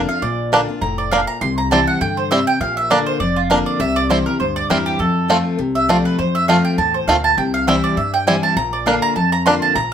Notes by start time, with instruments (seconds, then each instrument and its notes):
Already playing: steel-string acoustic guitar F2
0.09 steel-string acoustic guitar D4 F4, mandolin F5
0.22 upright bass A#1, steel-string acoustic guitar A#2, mandolin D5
0.52 steel-string acoustic guitar D3 A#3 D4 F4, five-string banjo A#3 D4
0.68 steel-string acoustic guitar D4 F4
0.81 upright bass F1, steel-string acoustic guitar A2, mandolin A#5
0.98 mandolin D5
1.11 steel-string acoustic guitar A#2, five-string banjo A#3 D4, mandolin F5
1.27 mandolin A#5
1.41 upright bass C2, steel-string acoustic guitar C3, mandolin C6
1.58 mandolin A#5
1.71 steel-string acoustic guitar E3 G3 C4 E4, five-string banjo G3 C4 E4, mandolin A5
1.87 mandolin F#5
2.01 upright bass G2, steel-string acoustic guitar D3, mandolin G5
2.17 mandolin C5
2.31 steel-string acoustic guitar C3, five-string banjo G3 C4 E4, mandolin E5
2.47 mandolin G5
2.60 upright bass A#1, steel-string acoustic guitar A#2, mandolin F5
2.77 mandolin E5
2.90 steel-string acoustic guitar D3 A#3 D4 F4, five-string banjo A#3 D4, mandolin D5
3.06 mandolin C5
3.20 upright bass F1, steel-string acoustic guitar F2, mandolin D5
3.36 mandolin F4
3.50 steel-string acoustic guitar D3 A#3 D4 F4, five-string banjo A#3 D4, mandolin A#4
3.66 mandolin D5
3.80 upright bass C2, steel-string acoustic guitar C3, mandolin E5
3.96 mandolin D5
4.09 steel-string acoustic guitar E3 G3 C4 E4, five-string banjo G3 C4 E4, mandolin C5
4.26 steel-string acoustic guitar C4 E4, mandolin A#4
4.39 upright bass D2, steel-string acoustic guitar G2, mandolin C5
4.56 mandolin D5
4.69 upright bass E2, steel-string acoustic guitar E3 G3 C4 E4, five-string banjo G3 C4 E4, mandolin A#4
4.86 mandolin G4
4.99 steel-string acoustic guitar F2, upright bass F2, mandolin A4
5.28 steel-string acoustic guitar F3 A3 C4 F4, five-string banjo A3 C4 F4
5.59 upright bass C2, steel-string acoustic guitar C3
5.75 mandolin E5
5.88 steel-string acoustic guitar F3 A3 C4 F4, five-string banjo A3 C4 F4, mandolin D5
6.05 mandolin B4
6.18 upright bass F2, steel-string acoustic guitar F2, mandolin C5
6.35 mandolin E5
6.48 steel-string acoustic guitar F3 A3 C4 F4, five-string banjo A3 C4 F4, mandolin F5
6.65 mandolin G5
6.78 upright bass E2, steel-string acoustic guitar A2, mandolin A5
6.94 mandolin C5
7.07 upright bass D2, steel-string acoustic guitar A#2, five-string banjo A3 C4 F4, mandolin F5
7.24 mandolin A5
7.37 upright bass C2, steel-string acoustic guitar C3, mandolin G5
7.54 mandolin F5
7.67 steel-string acoustic guitar E3 G3 C4 E4, five-string banjo G3 C4 E4, mandolin E5
7.84 mandolin D5
7.97 upright bass G2, steel-string acoustic guitar G2, mandolin E5
8.14 mandolin G5
8.27 steel-string acoustic guitar E3 G3 C4 E4, five-string banjo G3 C4 E4, mandolin G#5
8.43 mandolin A5
8.56 upright bass A#1, steel-string acoustic guitar A#2, mandolin A#5
8.73 mandolin D5
8.86 steel-string acoustic guitar D3 A#3 D4 F4, five-string banjo A#3 D4, mandolin F5
9.02 mandolin A#5
9.16 steel-string acoustic guitar F2, upright bass F2, mandolin A5
9.32 mandolin A#5
9.46 steel-string acoustic guitar D3 A#3 D4 F4, five-string banjo A#3 D4, mandolin C6
9.62 mandolin A5
9.75 upright bass A#1, steel-string acoustic guitar A#2, mandolin A#5